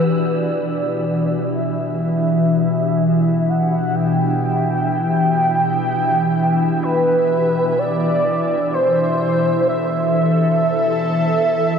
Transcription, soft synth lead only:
0.00 0.10 B4 medium
0.09 1.55 D5 loud
1.54 2.02 E5 loud
2.02 3.51 E5 loud
3.49 3.97 F#5 loud
3.95 6.85 G5 loud
6.83 7.80 B4 loud
7.79 8.75 D5 loud
8.74 9.67 C5 loud
9.68 11.79 E5 loud

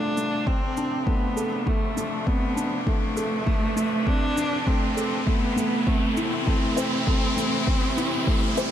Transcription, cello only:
0.00 0.48 D4 loud
0.47 1.09 C4 loud
1.07 1.68 B3 loud
1.67 2.29 A3 medium
2.28 2.87 B3 medium
2.88 4.09 A3 loud
4.07 4.69 D4 loud
4.67 5.29 C4 loud
5.27 5.89 B3 loud
5.87 6.19 A3 medium
6.18 8.71 C4 loud

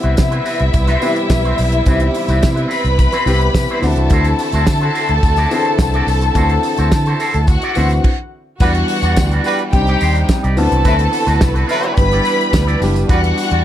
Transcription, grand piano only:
0.00 0.38 E3 medium
0.00 0.38 B3 medium
0.00 0.38 C4 medium
0.00 0.38 G4 medium
1.02 1.59 E3 medium
1.02 1.60 B3 medium
1.02 1.60 C4 medium
1.02 1.60 G4 medium
1.86 1.93 D#3 medium
1.86 2.63 B3 medium
1.86 2.63 C4 medium
1.86 2.63 G4 medium
1.93 2.66 E3 medium
3.26 3.80 E3 medium
3.26 3.83 B3 medium
3.26 3.81 C4 medium
3.26 3.84 G4 loud
3.82 4.72 E3 medium
3.82 4.73 C4 medium
3.82 4.73 D4 medium
3.82 4.73 F#4 loud
5.51 6.08 E3 medium
5.51 6.08 C4 medium
5.51 6.09 D4 medium
5.51 5.58 G#4 medium
5.59 6.12 A4 medium
6.35 7.12 E3 medium
6.35 7.12 C4 medium
6.35 7.12 D4 medium
6.35 7.12 F#4 medium
7.76 8.04 E3 medium
7.76 8.04 C4 medium
7.76 8.04 D4 medium
7.76 8.05 F#4 loud
8.60 9.37 E3 medium
8.60 9.37 G3 medium
8.60 9.37 B3 medium
8.60 9.37 D4 medium
8.60 9.37 F#4 medium
9.73 10.30 G3 medium
9.73 10.30 C4 medium
9.73 9.80 D4 medium
9.80 10.34 D#4 loud
10.57 11.47 E3 loud
10.57 11.47 B3 medium
10.57 11.47 C4 loud
10.57 11.47 D4 medium
10.57 11.48 F#4 loud
11.97 12.54 E3 medium
11.97 12.55 G3 medium
11.97 12.55 B3 medium
11.97 12.55 D4 medium
11.97 12.55 G4 loud
12.82 13.01 E3 medium
12.82 13.01 G3 medium
12.82 13.01 B3 medium
12.82 13.01 D4 medium
12.82 13.01 G4 medium
13.09 13.64 E3 medium
13.09 13.64 G3 medium
13.09 13.64 B3 medium
13.09 13.64 D4 medium
13.09 13.64 F#4 medium

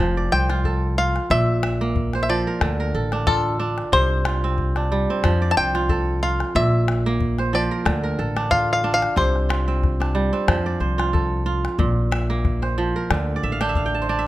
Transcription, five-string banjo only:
0.32 0.98 G5 medium
0.98 1.31 F5 medium
1.31 2.21 E5 medium
2.23 2.29 E5 medium
2.30 2.91 D5 medium
3.27 3.93 A4 medium
3.93 4.87 C5 loud
5.51 5.57 A5 medium
5.57 6.18 G5 loud
6.23 6.55 F5 medium
6.56 7.54 E5 medium
7.55 8.16 D5 medium
8.51 8.72 F5 loud
8.73 8.93 F5 medium
8.94 9.15 F5 medium
9.17 10.12 C5 medium

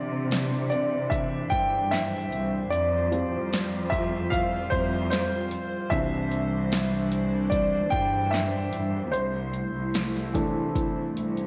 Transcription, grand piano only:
0.00 2.74 D3 medium
0.00 2.73 E3 soft
0.00 2.74 C4 medium
0.00 0.67 D5 medium
0.70 1.12 D5 medium
1.10 1.52 E5 medium
1.50 1.92 G5 loud
1.91 2.74 E5 medium
2.70 3.95 D5 medium
3.11 5.87 F3 soft
3.11 5.87 G3 soft
3.11 5.88 C4 medium
3.90 4.32 E5 medium
4.30 4.72 F5 medium
4.70 5.08 C5 medium
5.10 5.93 C5 medium
5.90 6.44 E3 medium
5.90 6.45 C4 soft
5.90 6.45 D4 medium
5.90 7.56 E5 medium
7.50 7.92 D5 medium
7.90 8.00 G5 medium
8.31 9.08 E5 medium
9.12 11.47 C5 medium
10.34 10.88 E3 medium
10.34 10.89 A3 soft
10.34 10.89 D4 medium

